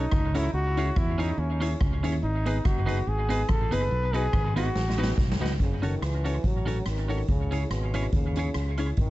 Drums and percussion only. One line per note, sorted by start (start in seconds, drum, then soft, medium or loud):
0.12 kick loud
0.12 cross-stick loud
0.35 closed hi-hat loud
0.77 closed hi-hat medium
0.96 kick loud
0.96 cross-stick loud
1.20 closed hi-hat medium
1.62 closed hi-hat medium
1.81 kick loud
1.81 cross-stick loud
2.04 closed hi-hat medium
2.46 closed hi-hat medium
2.65 kick loud
2.65 cross-stick loud
2.88 closed hi-hat medium
3.30 closed hi-hat loud
3.49 kick loud
3.49 cross-stick loud
3.72 closed hi-hat loud
4.14 closed hi-hat medium
4.33 kick loud
4.33 cross-stick loud
4.57 closed hi-hat medium
4.75 snare medium
4.90 snare medium
5.04 snare medium
5.18 kick loud
5.18 snare medium
5.32 snare medium
5.46 snare medium
5.60 kick loud
5.60 closed hi-hat medium
5.83 closed hi-hat medium
6.02 cross-stick loud
6.02 closed hi-hat medium
6.26 closed hi-hat medium
6.44 kick loud
6.44 closed hi-hat medium
6.67 closed hi-hat medium
6.86 cross-stick loud
6.86 closed hi-hat medium
7.10 open hi-hat medium
7.28 kick loud
7.28 closed hi-hat medium
7.52 closed hi-hat medium
7.71 cross-stick loud
7.71 closed hi-hat medium
7.94 closed hi-hat medium
8.12 kick loud
8.12 closed hi-hat medium
8.36 closed hi-hat medium
8.54 cross-stick loud
8.54 closed hi-hat medium
8.78 closed hi-hat loud
8.97 kick loud
8.97 closed hi-hat medium